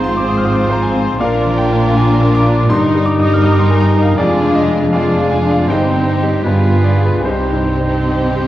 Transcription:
Already playing: G#1 G#2 F3 G#3 C4 F4 C5 A#5 C6
0.03 C6
0.17 C4 D6
0.29 D#6
0.37 F6
0.45 F4 D#6
0.53 D6
0.62 C6
0.70 C5 A#5
0.83 G#5
0.95 C4
1.19 A#1 A#2 D4 F4 A#4 D5 F5 A#5
1.46 F3
1.58 G5
1.71 D4
1.96 F4 G#5
2.21 A#4
2.35 D6
2.46 D4
2.69 G1 G2 G3 D#4 A#4 D#5 A#5 C6
2.95 G3
3.06 D6
3.18 D#4 D#6
3.33 F6
3.43 G3 D#6
3.52 D6
3.59 C6
3.69 A#4 G#5
3.80 A#5
3.94 D#4
4.02 F5
4.17 F1 F2 G#3 D4 F4 G#4 D5 G#5
4.44 F3
4.55 D#5
4.69 D4
4.91 D4 F4 G#4 D5 F5 G#5
5.21 G#4
5.31 G#5
5.44 D4
5.51 F5
5.68 G1 G2 C4 D#4 G4 C5 G5
5.72 D#5
5.96 C4
6.22 D#4 G4
6.43 G1 G2 B3 F4 G#4 B4 G#5
6.71 B3
6.84 D5
6.98 F4 G#4
7.05 B4
7.23 C2 C3 C4 D#4 G4 C5 G5
7.53 G2
7.81 C4
8.09 D#4
8.35 G4

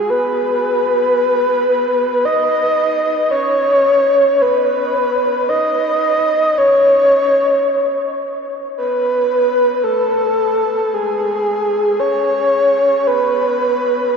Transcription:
Already playing: G#4
0.10 B4
2.25 D#5
3.31 C#5
4.42 B4
5.49 D#5
6.58 C#5
8.77 B4
9.84 A4
10.94 G#4
12.00 C#5
13.07 B4

